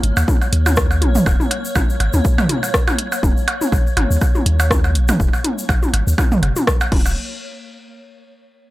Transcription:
0.00 0.12 G#1 loud
0.00 7.18 A#3 medium
0.00 7.19 C#5 medium
0.00 closed hi-hat loud
0.17 0.24 D#2 loud
0.17 percussion blips medium
0.17 shaker medium
0.28 kick loud
0.28 high tom soft
0.28 shaker medium
0.42 percussion blips soft
0.42 shaker soft
0.53 1.03 D#2 medium
0.53 closed hi-hat medium
0.66 high tom soft
0.66 percussion blips medium
0.66 shaker medium
0.76 kick loud
0.76 cross-stick loud
0.76 shaker medium
0.91 percussion blips soft
0.91 shaker soft
1.02 1.18 A#1 loud
1.02 closed hi-hat medium
1.02 high tom soft
1.15 mid tom medium
1.15 shaker medium
1.26 1.35 D#1 loud
1.26 kick loud
1.26 percussion blips medium
1.26 shaker medium
1.40 high tom soft
1.40 shaker soft
1.51 closed hi-hat loud
1.51 percussion blips soft
1.65 shaker medium
1.75 1.84 A#1 medium
1.75 kick loud
1.75 high tom soft
1.75 percussion blips medium
1.75 shaker medium
1.90 shaker soft
2.00 2.09 G#1 medium
2.00 closed hi-hat medium
2.00 percussion blips soft
2.13 2.21 D#2 loud
2.13 high tom soft
2.13 shaker medium
2.25 kick loud
2.25 shaker medium
2.38 mid tom medium
2.38 percussion blips medium
2.38 shaker soft
2.49 closed hi-hat loud
2.49 high tom soft
2.63 percussion blips soft
2.63 shaker medium
2.74 kick loud
2.74 cross-stick loud
2.74 shaker medium
2.88 high tom soft
2.88 percussion blips medium
2.88 shaker soft
2.98 closed hi-hat medium
3.12 percussion blips soft
3.12 shaker medium
3.23 3.32 D#1 loud
3.23 kick loud
3.23 high tom soft
3.23 shaker medium
3.37 shaker soft
3.48 closed hi-hat medium
3.48 percussion blips medium
3.61 high tom soft
3.61 shaker medium
3.72 3.81 A#1 medium
3.72 kick loud
3.72 percussion blips soft
3.72 shaker medium
3.87 shaker soft
3.97 4.05 G#1 medium
3.97 closed hi-hat medium
3.97 high tom soft
3.97 percussion blips medium
4.11 4.17 D#2 loud
4.11 shaker medium
4.21 kick loud
4.21 percussion blips soft
4.21 shaker medium
4.35 high tom soft
4.35 shaker soft
4.46 4.97 D#2 medium
4.46 closed hi-hat medium
4.60 percussion blips medium
4.60 shaker medium
4.71 kick loud
4.71 cross-stick loud
4.71 high tom soft
4.71 shaker medium
4.84 percussion blips soft
4.84 shaker soft
4.95 5.11 A#1 medium
4.95 closed hi-hat medium
5.08 mid tom medium
5.08 high tom soft
5.08 percussion blips medium
5.08 shaker medium
5.20 5.28 D#1 loud
5.20 kick loud
5.20 shaker medium
5.33 percussion blips soft
5.33 shaker soft
5.44 closed hi-hat loud
5.44 high tom soft
5.58 shaker medium
5.69 5.77 A#1 medium
5.69 kick loud
5.69 percussion blips medium
5.69 shaker medium
5.83 high tom soft
5.83 shaker soft
5.93 6.02 G#1 medium
5.93 closed hi-hat loud
5.93 percussion blips soft
6.07 6.14 D#2 loud
6.07 shaker medium
6.18 kick loud
6.18 high tom soft
6.18 percussion blips medium
6.18 shaker medium
6.32 mid tom medium
6.32 shaker soft
6.43 6.51 F#1 loud
6.43 closed hi-hat medium
6.43 percussion blips soft
6.56 high tom soft
6.56 shaker medium
6.67 kick loud
6.67 cross-stick loud
6.67 shaker medium
6.81 percussion blips medium
6.81 shaker soft
6.92 7.15 D#1 medium
6.92 kick loud
6.92 high tom soft
6.92 crash medium
7.06 percussion blips soft
7.06 shaker medium

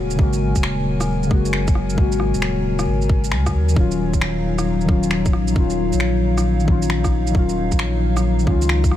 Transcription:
0.00 0.18 D#1 medium
0.00 0.15 C#3 loud
0.00 8.97 F#3 medium
0.00 0.18 G#3 medium
0.00 0.20 A#3 medium
0.00 0.23 F#4 loud
0.00 3.73 A#4 medium
0.00 8.97 C#5 medium
0.00 3.73 G#5 loud
0.11 shaker medium
0.15 1.25 C#3 loud
0.15 1.28 G#3 medium
0.15 kick loud
0.19 0.54 G#1 loud
0.19 1.30 A#3 medium
0.19 1.31 F#4 loud
0.33 shaker soft
0.55 1.30 D#1 medium
0.55 kick medium
0.55 shaker medium
0.63 finger snap loud
1.00 cross-stick medium
1.00 shaker medium
1.23 1.92 C#3 loud
1.23 shaker soft
1.29 1.97 F#1 loud
1.29 1.95 G#3 medium
1.29 1.96 A#3 medium
1.29 kick loud
1.29 cross-stick soft
1.34 1.98 F#4 loud
1.45 shaker medium
1.53 finger snap loud
1.67 kick loud
1.67 shaker soft
1.75 cross-stick soft
1.90 3.06 C#3 medium
1.90 shaker medium
1.96 2.33 G#1 loud
1.96 3.07 G#3 medium
1.96 3.08 A#3 medium
1.96 kick loud
2.01 3.10 F#4 loud
2.12 shaker soft
2.20 cross-stick medium
2.34 2.86 D#1 medium
2.34 shaker medium
2.42 finger snap loud
2.79 cross-stick medium
2.79 shaker medium
2.87 3.33 G#1 medium
3.02 shaker soft
3.09 kick loud
3.24 shaker medium
3.31 3.55 C#2 medium
3.31 finger snap loud
3.46 kick medium
3.46 cross-stick medium
3.46 shaker soft
3.54 3.75 D#2 loud
3.69 4.83 D#3 loud
3.69 shaker medium
3.74 5.35 D#1 loud
3.74 4.86 F#3 medium
3.74 4.87 C#4 medium
3.74 8.97 D#4 medium
3.74 8.97 F5 loud
3.74 kick loud
3.80 4.88 F4 loud
3.91 shaker soft
4.14 kick medium
4.14 shaker medium
4.21 finger snap loud
4.58 cross-stick medium
4.58 shaker medium
4.81 5.51 D#3 loud
4.81 shaker soft
4.87 5.53 F#3 medium
4.87 5.55 C#4 medium
4.87 kick loud
4.87 cross-stick soft
4.92 5.56 F4 loud
5.03 shaker medium
5.11 finger snap loud
5.25 kick loud
5.25 shaker soft
5.33 5.55 A#1 medium
5.33 cross-stick soft
5.48 shaker medium
5.52 6.62 D#3 loud
5.52 6.65 F#3 medium
5.56 5.91 D#1 loud
5.56 6.67 C#4 medium
5.56 6.68 F4 loud
5.56 kick loud
5.70 shaker soft
5.93 7.34 A#1 medium
5.93 shaker medium
6.00 finger snap loud
6.38 cross-stick medium
6.38 shaker medium
6.60 7.29 D#3 medium
6.60 shaker soft
6.66 7.32 F#3 medium
6.66 7.34 C#4 medium
6.66 kick loud
6.71 7.35 F4 loud
6.82 shaker medium
6.90 finger snap loud
7.04 kick medium
7.04 cross-stick medium
7.04 shaker soft
7.27 8.41 D#3 loud
7.27 shaker medium
7.33 7.70 D#1 loud
7.33 8.44 F#3 medium
7.33 8.45 C#4 medium
7.33 kick loud
7.39 8.47 F4 loud
7.49 shaker soft
7.72 8.46 A#1 medium
7.72 kick medium
7.72 shaker medium
7.79 finger snap loud
8.17 cross-stick medium
8.17 shaker medium
8.39 8.97 D#3 loud
8.39 shaker soft
8.45 8.97 C#2 loud
8.45 8.97 F#3 medium
8.45 8.97 C#4 medium
8.45 kick loud
8.45 cross-stick soft
8.50 8.97 F4 loud
8.62 shaker medium
8.69 finger snap loud
8.84 kick loud
8.84 shaker soft
8.91 cross-stick medium

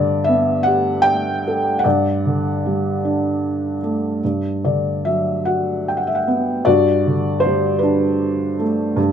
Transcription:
0.00 1.82 G2 medium
0.00 1.43 D3 medium
0.00 0.28 D5 medium
0.24 0.66 E5 medium
0.28 1.81 B3 soft
0.63 1.02 F#5 loud
0.67 1.81 G4 medium
1.02 1.85 G5 loud
1.47 1.84 A4 medium
1.79 3.76 F#5 medium
1.84 4.20 G2 medium
1.84 3.78 D5 medium
2.26 3.80 D3 medium
2.66 4.21 G3 soft
3.05 4.21 D4 soft
3.83 4.22 A3 soft
4.24 6.63 G2 medium
4.65 6.23 D3 soft
4.65 5.07 D5 medium
5.05 6.63 F#3 soft
5.05 5.47 E5 medium
5.45 6.63 F#4 soft
5.45 5.87 F#5 medium
5.88 5.98 G5 medium
5.97 6.07 F#5 medium
6.07 6.17 E5 medium
6.15 6.25 F#5 medium
6.27 6.66 B3 medium
6.65 8.93 G2 medium
6.65 7.79 F#4 medium
6.65 7.40 D5 medium
7.07 8.55 D3 soft
7.40 7.78 C5 medium
7.46 8.94 G3 medium
7.79 8.62 B4 medium
7.83 8.94 D4 medium
8.59 8.97 A3 medium
8.96 9.12 G2 medium

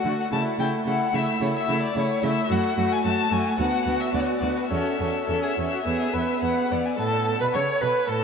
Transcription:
0.00 0.19 F#5 medium
0.05 0.13 D3 soft
0.05 0.31 A3 soft
0.05 0.32 F#4 soft
0.20 0.25 F#5 medium
0.32 0.40 C#3 medium
0.32 0.58 A3 soft
0.32 0.59 E4 soft
0.32 0.40 A5 medium
0.59 0.67 C#3 soft
0.59 0.85 A3 soft
0.59 0.85 E4 soft
0.59 0.67 G5 medium
0.86 0.94 C#3 soft
0.86 1.13 A3 soft
0.86 1.12 E4 soft
0.86 1.15 F#5 medium
1.13 1.22 C#3 soft
1.13 1.41 A3 soft
1.13 1.40 E4 soft
1.13 1.41 E5 medium
1.41 1.49 C#3 medium
1.41 1.69 A3 soft
1.41 1.68 E4 soft
1.41 1.47 C#5 medium
1.55 1.82 E5 medium
1.68 1.77 C#3 medium
1.68 1.96 A3 soft
1.68 1.94 E4 soft
1.82 1.97 D5 medium
1.95 2.04 C#3 soft
1.95 2.23 A3 soft
1.95 2.22 E4 soft
1.95 2.24 C#5 medium
2.23 2.31 C#3 medium
2.23 2.50 A3 soft
2.23 2.48 E4 soft
2.23 2.53 E5 medium
2.48 2.58 F#2 medium
2.48 2.78 A3 medium
2.48 2.75 F#4 soft
2.48 2.94 F#5 medium
2.76 2.85 F#2 soft
2.76 3.05 A3 soft
2.76 3.03 F#4 soft
2.92 3.04 G#5 medium
3.04 3.13 F#2 soft
3.04 3.31 A3 soft
3.04 3.31 F#4 soft
3.04 3.33 A5 medium
3.31 3.40 F#2 soft
3.31 3.58 A3 soft
3.31 3.58 F#4 soft
3.31 3.58 G#5 medium
3.58 3.67 D2 medium
3.58 3.86 B3 soft
3.58 3.86 F#4 soft
3.58 4.01 F#5 medium
3.86 3.94 D2 soft
3.86 4.13 B3 soft
3.86 4.12 F#4 soft
4.00 4.13 E5 medium
4.12 4.22 D2 soft
4.12 4.41 B3 soft
4.12 4.41 F#4 soft
4.12 4.21 D5 medium
4.20 4.28 C#5 soft
4.26 4.58 D5 medium
4.41 4.50 D2 soft
4.41 4.70 B3 soft
4.41 4.70 F#4 soft
4.56 4.69 B4 soft
4.70 4.79 E2 medium
4.70 4.99 C#4 soft
4.70 5.00 A4 soft
4.70 6.39 E5 medium
5.00 5.08 E2 soft
5.00 5.28 C#4 soft
5.00 5.26 A4 soft
5.27 5.37 E2 soft
5.27 5.57 C#4 soft
5.27 5.42 A4 soft
5.43 5.51 G#4 soft
5.57 5.66 E2 soft
5.57 5.85 C#4 soft
5.71 5.84 F#4 soft
5.85 5.94 E2 soft
5.85 6.14 B3 soft
5.85 6.15 G#4 soft
6.13 6.22 E2 soft
6.13 6.42 B3 soft
6.13 6.43 B4 soft
6.42 6.51 E2 soft
6.42 6.70 B3 soft
6.42 6.73 B4 soft
6.42 6.87 F#5 medium
6.71 6.80 E2 soft
6.71 6.98 B3 soft
6.71 6.99 D5 soft
6.85 6.98 G#5 soft
6.98 7.38 A2 medium
6.98 7.38 A4 medium
6.98 7.43 A4 medium
6.98 7.39 A5 medium
7.40 7.47 B2 soft
7.40 7.46 B4 soft
7.40 7.56 B4 soft
7.40 7.46 B5 medium
7.54 7.63 C#3 medium
7.54 7.83 C#5 soft
7.54 7.82 C#5 soft
7.54 7.62 C#6 medium
7.81 7.90 B2 soft
7.81 8.10 B4 medium
7.81 8.09 B4 medium
7.81 7.89 B5 medium
8.09 8.24 A2 soft
8.09 8.24 A4 medium
8.09 8.24 A5 medium

